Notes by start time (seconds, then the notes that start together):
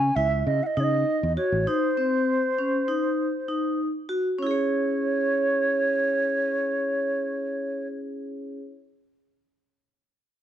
Already playing: C#3 G#5
0.16 C#2 E4 E5
0.46 C#3 D#5
0.63 D#5 F#5
0.77 C#3 D#4 C#5
0.83 D#5
1.23 E2
1.37 F#4 C#5
1.52 A1
1.67 D#4 C5
1.97 C4
2.59 C#4
2.88 D#4
3.48 D#4
4.09 F#4
4.39 C#4 E4 C#5
4.47 G#4
4.51 C#5